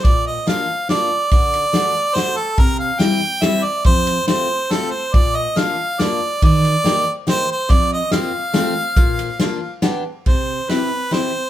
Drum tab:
RD |x-x-x-|xxx-x-|x-x-x-|xxx-x-|
SD |--o-o-|--o-o-|--o-o-|--o-o-|
BD |o-----|o-----|o-----|o-----|

RD |x-x-x-|xxx-x-|x-x-x-|xxx-x-|
SD |--o-o-|--o-o-|--o-o-|--o-o-|
BD |o-----|o-----|o-----|o-----|

RD |x-x-x-|
SD |--o-o-|
BD |o-----|